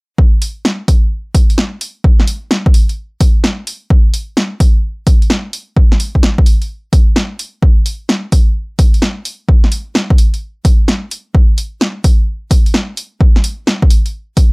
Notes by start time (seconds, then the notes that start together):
0.18 kick
0.42 open hi-hat
0.65 snare
0.88 kick, open hi-hat
1.35 kick, open hi-hat
1.50 open hi-hat
1.58 snare
1.81 open hi-hat
2.04 kick
2.20 snare
2.28 open hi-hat
2.51 snare
2.66 kick
2.74 open hi-hat
2.89 open hi-hat
3.21 kick, open hi-hat
3.44 snare
3.67 open hi-hat
3.90 kick
4.14 open hi-hat
4.37 snare
4.60 kick, open hi-hat
5.07 kick, open hi-hat
5.22 open hi-hat
5.30 snare
5.53 open hi-hat
5.77 kick
5.92 snare
6.00 open hi-hat
6.15 kick
6.23 snare
6.38 kick
6.46 open hi-hat
6.62 open hi-hat
6.93 kick, open hi-hat
7.16 snare
7.39 open hi-hat
7.63 kick
7.86 open hi-hat
8.09 snare
8.32 kick, open hi-hat
8.79 kick, open hi-hat
8.94 open hi-hat
9.02 snare
9.25 open hi-hat
9.49 kick
9.64 snare
9.72 open hi-hat
9.95 snare
10.10 kick
10.18 open hi-hat
10.34 open hi-hat
10.65 kick, open hi-hat
10.88 snare
11.11 open hi-hat
11.35 kick
11.58 open hi-hat
11.81 snare
12.04 kick, open hi-hat
12.51 kick, open hi-hat
12.66 open hi-hat
12.74 snare
12.97 open hi-hat
13.21 kick
13.36 snare
13.44 open hi-hat
13.67 snare
13.82 kick
13.90 open hi-hat
14.06 open hi-hat
14.37 kick, open hi-hat